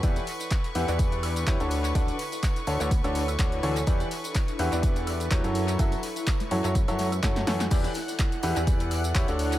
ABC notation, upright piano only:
X:1
M:4/4
L:1/16
Q:"Swing 16ths" 1/4=125
K:Edor
V:1 name="Upright piano"
[E,EGBd]2 z4 [E,EGBf] [E,EGBd]4- [E,EGBd] [EGBc] [D,DFAc]3 | [D,DFAd]2 z4 [D,DFAc] [D,DFAc] z [D,DFAc]2 z [D,DFAc]2 [E,DFAc] z | [E,EGBd]2 z4 [E,EGBf] [E,EGBd]4- [E,EGBd] [F,EGBc] [F,EFAc]3 | [F,EFAe]2 z4 [F,EFAc] [F,EFAc] z [F,EFAc]2 z [F,EFAc]2 [E,EFAc] z |
[E,EGBd]2 z4 [E,EGBf] [E,EGBd]4- [E,EGBd] [EGBc] [D,DFAc]3 |]